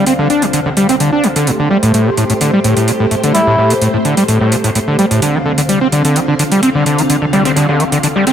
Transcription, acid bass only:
0.07 C4
0.19 D3
0.30 D4
0.42 E3
0.53 D3
0.66 D3
0.77 G3
0.89 C4
1.00 D3
1.13 D4
1.24 E3
1.36 D3
1.47 A2
1.59 D3
1.71 G3
1.83 A2
1.94 A2
2.06 B2
2.18 A2
2.30 A2
2.41 D3
2.53 G3
2.64 A2
2.77 A2
2.88 B2
3.00 A2
3.11 A2
3.24 D3
3.35 G3
3.47 A2
3.58 A2
3.70 B2
3.82 A2
3.94 A2
4.05 D3
4.17 G3
4.28 A2
4.41 A2
4.52 B2
4.64 A2
4.75 A2
4.88 D3
4.99 G3
5.11 A2
5.22 D3
5.34 E3
5.46 D3
5.58 D3
5.69 G3
5.81 C4
5.92 D3
6.05 D3
6.16 E3
6.28 D3
6.39 D3
6.52 G3
6.63 C4
6.75 D3
6.86 D3
6.99 E3
7.10 D3
7.22 D3
7.33 G3
7.45 C4
7.57 D3
7.69 D3
7.80 E3
7.92 D3
8.03 D3
8.16 G3
8.27 C4

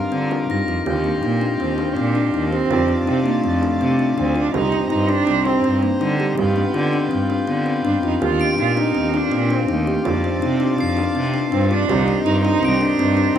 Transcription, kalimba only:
0.12 C4
0.31 D4
0.50 D#4
0.68 F4
0.86 G4
1.04 D4
1.23 D#4
1.41 D4
1.60 C4
1.78 D4
1.97 C4
2.15 D4
2.34 D#4
2.53 G4
2.71 F4
2.89 C4
3.07 D#4
3.26 D4
3.44 C4
3.63 D4
3.81 C4
3.99 D4
4.18 D4
4.36 F4
4.54 G4
4.72 C4
4.90 D#4
5.09 D4
5.27 C4
5.45 D4
5.64 C4
5.83 D4
6.01 D#4
6.20 G4
6.38 G4
6.56 D4
6.74 F4
6.93 D4
7.11 C4
7.30 D4
7.47 B3
7.66 C4
7.85 D4
8.03 F4
8.22 G4
8.40 D4
8.58 D#4
8.77 D4
8.95 C4
9.14 D4
9.32 C4
9.50 D4
9.69 D#4
9.87 G4
10.05 F4
10.24 C4
10.42 D#4
10.60 D4
10.78 C4
10.97 D4
11.15 C4
11.34 D4
11.52 D4
11.71 F4
11.90 G4
12.08 C4
12.26 D#4
12.45 D4
12.63 C4
12.81 D4
12.99 C4
13.17 D4

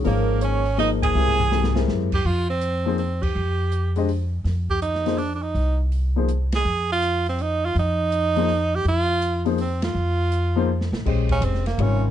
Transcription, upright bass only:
0.05 G#1
1.15 C2
1.88 F#2
2.25 F2
3.35 F2
4.44 F2
5.55 C2
6.65 F2
7.75 F2
8.85 F2
9.94 F2
10.92 C2
11.05 A#1
11.41 F1
11.78 G#1

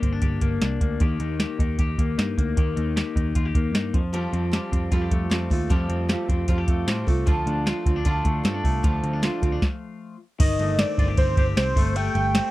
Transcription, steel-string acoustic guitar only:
4.13 F3 G3 C4 F4 A4
4.51 G3 C4 F4 A4
4.91 F3 G3 C4 F4 A4
5.30 G3 C4 F4 A4
5.50 C4 F4 A4
5.70 F3 G3 C4 F4 A4
6.09 G3 C4 F4 A4
6.28 C4 F4 A4
6.48 F3 G3 C4 F4 A4
6.88 G3 C4 F4 A4
7.07 C4 F4 A4
7.26 D3 A3 D4 F4 A4
7.66 A3 D4 F4 A4
7.86 D4 F4 A4
8.05 D3 A3 D4 F4 A4
8.44 A3 D4 F4 A4
8.83 D3 A3 D4 F4 A4
9.22 A3 D4 F4 A4
9.42 D4 F4 A4

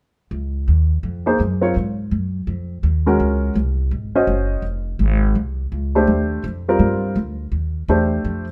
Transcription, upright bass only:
0.31 C#2
0.68 D#2
1.03 F2
1.40 F#2
1.76 G#2
2.11 F#2
2.47 F2
2.83 D#2
3.20 C#2
3.56 C2
3.91 G#1
4.27 F#1
4.62 F1
4.99 G#1
5.35 C2
5.72 C#2
6.07 D#2
6.44 F2
6.79 G2
7.16 D2
7.52 D#2
7.88 E2
8.25 F2

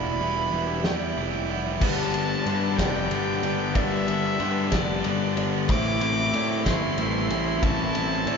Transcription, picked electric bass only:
Already playing: E1
0.52 E1
0.85 E2
1.17 F1
1.81 G1
2.46 G2
2.78 F1
3.10 G1
3.43 G1
3.75 G1
4.40 G2
4.72 F1
5.05 G1
5.37 G1
5.69 A1
6.34 A2
6.65 G1
6.98 A1
7.30 A1
7.62 A1
8.26 A2

